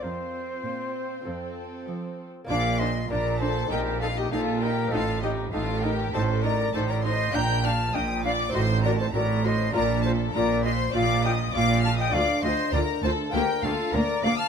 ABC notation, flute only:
X:1
M:4/4
L:1/16
Q:1/4=99
K:Bb
V:1 name="Flute"
c12 z4 | f2 e2 d2 c2 B2 A G A2 B2 | A2 G2 A2 B2 c2 d2 c d e2 | b2 a2 g2 f2 e2 d c d2 e2 |
d2 c2 d2 e2 f2 g2 f2 a g | f2 e2 d2 c2 B2 A2 d2 f a |]